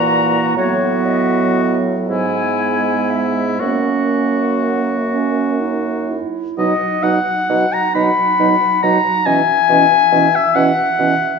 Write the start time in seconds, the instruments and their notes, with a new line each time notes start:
Already playing: bassoon A#2, french horn E3, clarinet A#3, oboe F#4, flute A#5
0.56 bassoon A2, french horn F#3, clarinet B3, oboe F#4, flute C#5
1.05 flute D#5
2.08 bassoon G#2, french horn G#3, clarinet B3, oboe E4, flute G#5
3.10 flute E5
3.59 bassoon F#2, french horn A#3, clarinet C#4, oboe F#4, flute F#5
5.11 clarinet C#4
5.60 clarinet D#4
6.10 clarinet E4
6.57 bassoon B2, french horn F#3, clarinet D#4, oboe D#5, flute F#5
7.03 bassoon B2, french horn F#3, clarinet D#4, oboe F#5
7.49 bassoon B2, french horn F#3, clarinet D#4
7.73 oboe A#5
7.95 bassoon B2, french horn F#3, clarinet D#4, oboe B5
8.39 bassoon B2, french horn F#3, clarinet D#4
8.83 bassoon B2, french horn F#3, clarinet D#4, oboe A#5
9.26 bassoon B2, french horn E3, clarinet C#4, flute E5, oboe G#5
9.69 bassoon B2, french horn E3, clarinet C#4
10.12 bassoon B2, french horn E3, clarinet C#4
10.35 oboe E5
10.55 bassoon B2, french horn E3, clarinet C#4, oboe F#5
10.99 bassoon B2, french horn E3, clarinet C#4